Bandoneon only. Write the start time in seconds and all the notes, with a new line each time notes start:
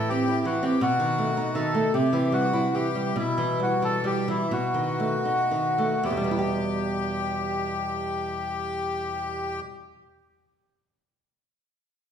0.09 G4
0.46 F#4
0.63 G4
0.82 F#4
1.55 A4
1.94 G4
2.34 F#4
2.74 G4
3.19 E4
3.63 F#4
3.84 A4
4.06 G4
4.30 E4
4.53 F#4
6.05 G4